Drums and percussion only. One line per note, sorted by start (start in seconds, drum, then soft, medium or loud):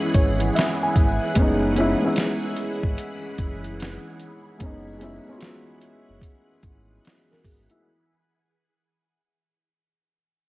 0.14 kick medium
0.14 closed hi-hat medium
0.40 closed hi-hat soft
0.56 snare loud
0.56 closed hi-hat medium
0.96 kick medium
0.96 closed hi-hat medium
1.35 kick loud
1.35 closed hi-hat medium
1.76 closed hi-hat medium
2.16 snare loud
2.16 closed hi-hat medium
2.56 closed hi-hat medium
2.83 kick medium
2.98 closed hi-hat medium
3.38 kick medium
3.38 closed hi-hat medium
3.64 closed hi-hat soft
3.80 snare loud
3.80 closed hi-hat medium
4.20 closed hi-hat medium
4.60 kick loud
4.60 closed hi-hat medium
5.01 closed hi-hat medium
5.41 snare loud
5.41 closed hi-hat medium
5.81 closed hi-hat medium
6.22 kick medium
6.22 closed hi-hat medium
6.63 kick medium
6.63 closed hi-hat medium
7.05 snare loud
7.05 closed hi-hat medium
7.33 snare soft
7.45 kick medium
7.45 open hi-hat soft
7.70 closed hi-hat soft